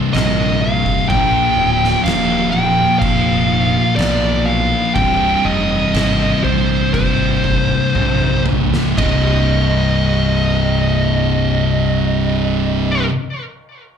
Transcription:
0.00 0.12 C2 medium
0.00 1.08 C2 loud
0.00 0.12 G2 medium
0.00 1.08 G2 loud
0.00 0.11 C3 medium
0.00 1.09 C3 loud
0.13 0.87 A#1 medium
0.13 1.07 C2 medium
0.13 1.08 G2 medium
0.13 1.08 C3 medium
0.13 0.63 D#5 loud
0.13 snare loud
0.13 crash medium
0.61 1.08 F5 loud
0.86 kick medium
1.09 1.47 A#1 loud
1.09 2.51 A#2 loud
1.09 2.51 F3 loud
1.09 2.51 A#3 loud
1.09 2.03 G5 loud
1.09 kick loud
1.09 crash medium
1.57 1.94 D1 loud
1.84 snare soft
2.04 2.79 D#1 loud
2.04 2.51 F5 medium
2.04 crash medium
2.08 snare loud
2.51 3.96 F3 medium
2.51 3.95 A#3 medium
2.51 2.98 G5 medium
2.56 3.97 A#2 medium
2.99 3.76 F1 loud
2.99 4.00 F5 medium
2.99 kick loud
2.99 crash medium
3.96 4.73 B1 loud
3.96 4.93 A#2 medium
3.96 4.94 F3 medium
3.96 4.48 D5 loud
3.96 crash medium
4.01 4.95 A#3 loud
4.01 snare loud
4.46 4.94 F5 medium
4.95 5.34 C1 medium
4.95 6.41 C2 loud
4.95 6.42 G2 loud
4.95 6.42 C3 loud
4.95 5.46 G5 loud
4.95 kick loud
4.95 crash medium
5.44 5.82 F1 medium
5.44 6.44 D#5 loud
5.94 6.32 G#1 medium
5.94 snare loud
5.94 crash medium
6.44 6.83 A#1 medium
6.44 7.94 C2 medium
6.44 7.93 G2 medium
6.44 7.92 C3 medium
6.44 6.93 C5 medium
6.94 7.71 G#1 loud
6.94 8.42 C5 medium
6.94 kick loud
6.94 crash medium
7.44 kick medium
7.95 8.73 A#1 loud
7.95 8.95 C2 medium
7.95 8.96 G2 medium
7.95 8.96 C3 loud
7.95 high tom medium
8.20 mid tom medium
8.46 mid tom loud
8.74 snare loud
8.98 13.05 C1 medium
8.98 13.08 C2 medium
8.98 13.10 G2 loud
8.98 13.12 C3 loud
8.98 13.05 D#5 medium
8.98 kick loud
8.98 ride bell medium

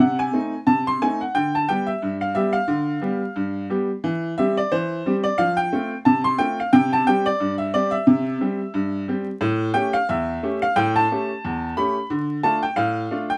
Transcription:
0.00 0.28 C3 medium
0.00 0.19 F#5 loud
0.19 0.58 G#5 loud
0.33 0.52 A3 medium
0.33 0.52 C4 medium
0.33 0.53 D#4 medium
0.67 0.96 C3 medium
0.67 0.86 A5 loud
0.87 1.02 C6 loud
1.02 1.20 A3 medium
1.02 1.21 C4 medium
1.02 1.21 D#4 medium
1.02 1.21 G#5 loud
1.21 1.35 F#5 medium
1.35 1.64 D3 medium
1.35 1.54 G5 loud
1.55 1.69 A5 loud
1.69 1.88 G3 medium
1.69 1.88 B3 medium
1.69 1.88 G4 medium
1.69 1.88 G5 loud
1.87 2.14 E5 loud
2.02 2.31 G2 medium
2.21 2.36 F5 medium
2.35 2.54 G3 medium
2.35 2.54 B3 medium
2.35 2.54 G4 medium
2.35 2.55 E5 loud
2.53 3.65 F5 loud
2.68 2.97 D3 loud
3.02 3.21 G3 medium
3.02 3.21 B3 medium
3.02 3.21 G4 medium
3.36 3.65 G2 medium
3.70 3.88 G3 medium
3.70 3.89 B3 medium
3.70 3.89 G4 medium
4.04 4.32 E3 loud
4.38 4.57 G3 medium
4.38 4.57 C4 medium
4.38 4.57 G4 medium
4.38 4.57 E5 loud
4.57 4.72 D5 loud
4.72 5.00 E3 loud
4.72 5.14 C5 loud
5.06 5.24 G3 medium
5.06 5.25 C4 medium
5.06 5.25 G4 medium
5.24 5.38 D5 loud
5.38 5.67 F3 loud
5.38 5.57 F5 loud
5.57 5.95 G5 loud
5.73 5.91 A3 medium
5.73 5.91 C4 medium
5.73 5.91 F4 medium
6.05 6.34 C3 medium
6.05 6.24 A5 loud
6.24 6.39 C6 loud
6.38 6.57 A3 medium
6.38 6.58 C4 medium
6.38 6.58 F4 medium
6.38 6.58 G5 loud
6.60 6.74 F5 medium
6.73 7.01 C3 loud
6.73 6.92 G5 loud
6.93 7.07 A5 loud
7.07 7.26 G3 medium
7.07 7.26 C4 medium
7.07 7.26 G4 medium
7.07 7.26 G5 loud
7.26 7.53 D5 loud
7.40 7.69 G2 medium
7.58 7.73 E5 loud
7.74 7.92 G3 medium
7.74 7.93 C4 medium
7.74 7.93 G4 medium
7.74 7.93 D5 loud
7.91 9.03 E5 loud
8.07 8.36 C3 loud
8.41 8.59 G3 medium
8.41 8.59 C4 medium
8.41 8.60 G4 medium
8.74 9.03 G2 loud
9.08 9.26 G3 medium
9.08 9.27 C4 medium
9.08 9.27 G4 medium
9.41 9.70 A2 loud
9.74 9.93 A3 medium
9.74 9.93 C#4 medium
9.74 9.94 G4 medium
9.74 9.93 G5 loud
9.93 10.08 F5 loud
10.09 10.38 E2 medium
10.09 10.59 E5 loud
10.43 10.61 A3 medium
10.43 10.62 C#4 medium
10.43 10.62 G4 medium
10.62 10.76 F5 loud
10.76 11.05 A2 loud
10.76 10.95 G5 loud
10.96 11.73 A5 loud
11.12 11.30 A3 medium
11.12 11.29 C#4 medium
11.12 11.30 G4 medium
11.45 11.72 E2 medium
11.77 11.96 A3 medium
11.77 11.96 C#4 medium
11.77 11.96 G4 medium
11.77 12.09 B5 loud
12.10 12.39 D3 loud
12.43 12.62 A3 medium
12.43 12.63 D4 medium
12.43 12.63 F4 medium
12.43 12.63 A5 loud
12.63 12.77 G5 loud
12.76 13.06 A2 medium
12.76 13.19 F5 loud
13.11 13.30 A3 medium
13.11 13.30 D4 medium
13.11 13.30 F4 medium
13.30 13.38 G5 loud

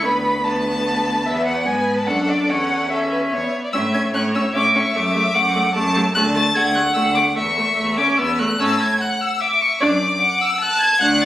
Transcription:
0.05 1.24 D2 medium
0.05 0.44 B3 medium
0.05 0.45 B4 medium
0.05 0.46 B5 medium
0.45 1.24 B3 medium
0.45 1.25 B4 medium
0.45 1.27 A5 medium
1.26 1.69 E2 medium
1.26 1.66 B3 medium
1.26 1.66 B4 medium
1.26 1.45 E5 medium
1.45 1.68 F#5 medium
1.67 2.09 G#2 medium
1.67 2.09 B3 medium
1.67 2.10 B4 medium
1.67 1.97 G#5 medium
1.98 2.08 A5 medium
2.07 2.48 F#2 medium
2.07 2.51 D4 medium
2.07 2.48 A4 medium
2.07 2.30 F#5 medium
2.29 2.51 D5 medium
2.48 3.30 E2 medium
2.48 2.90 C#4 medium
2.48 2.90 A4 medium
2.48 2.92 F#5 medium
2.91 3.35 C#4 soft
2.91 3.10 A4 medium
2.91 3.53 E5 medium
3.12 3.20 B4 medium
3.32 3.40 E2 medium
3.32 3.54 B3 medium
3.32 3.63 C#5 medium
3.64 3.73 D5 medium
3.73 4.09 A2 medium
3.73 3.82 C#4 medium
3.73 4.11 E5 medium
3.73 3.81 E6 medium
3.94 4.03 C#4 medium
3.94 4.02 G#6 medium
4.14 4.50 A2 medium
4.14 4.22 C#4 medium
4.14 4.55 C#5 medium
4.14 4.22 F#6 medium
4.35 4.43 C#4 medium
4.35 4.43 E6 medium
4.54 4.90 A2 medium
4.54 4.63 C#4 medium
4.54 5.36 E5 medium
4.54 4.75 D6 loud
4.75 4.83 C#4 medium
4.75 4.97 C#6 medium
4.94 5.30 F#2 medium
4.94 5.03 A3 medium
4.94 5.96 D6 loud
5.14 5.22 A3 medium
5.35 5.71 F#2 medium
5.35 5.43 A3 medium
5.35 5.74 F#5 medium
5.55 5.63 A3 medium
5.75 6.11 F#2 loud
5.75 5.83 A3 medium
5.75 6.14 A5 loud
5.96 6.04 A3 medium
6.15 6.51 D2 medium
6.15 6.24 A3 medium
6.15 6.57 A5 loud
6.15 6.23 F#6 loud
6.35 6.43 A3 medium
6.35 6.56 A6 loud
6.55 6.90 D2 medium
6.55 6.63 A3 medium
6.55 7.37 F#5 loud
6.55 6.77 G#6 loud
6.75 6.84 A3 medium
6.75 6.93 F#6 loud
6.94 7.31 D2 medium
6.94 7.04 A3 medium
6.94 7.02 E6 loud
7.15 7.24 A3 medium
7.15 7.23 D6 loud
7.36 7.72 E2 medium
7.36 7.44 A3 medium
7.36 8.38 E5 medium
7.36 7.97 C#6 loud
7.57 7.65 A3 medium
7.77 8.13 E2 medium
7.77 8.00 A3 medium
7.97 8.20 C#4 medium
7.97 8.18 D6 medium
8.18 8.54 E2 medium
8.18 8.41 B3 medium
8.18 8.40 E6 medium
8.39 8.59 A3 medium
8.39 8.61 F#6 medium
8.60 8.94 A2 medium
8.60 8.79 C#4 medium
8.60 8.98 A5 medium
8.60 8.82 E6 loud
8.80 9.03 G#6 loud
9.00 9.42 F#5 medium
9.00 9.22 F#6 medium
9.21 9.43 E6 medium
9.41 9.82 E5 medium
9.41 9.63 D6 loud
9.61 9.80 C#6 loud
9.81 10.14 F#2 medium
9.81 10.00 D4 medium
9.81 10.20 D5 medium
9.81 10.43 D6 loud
10.21 10.60 F#5 medium
10.41 10.63 E6 loud
10.61 11.00 A5 loud
10.61 10.80 F#6 loud
10.81 11.02 G#6 loud
11.00 11.25 D2 loud
11.00 11.25 D4 medium
11.00 11.25 F#5 loud
11.00 11.23 F#6 loud
11.22 11.25 A6 loud

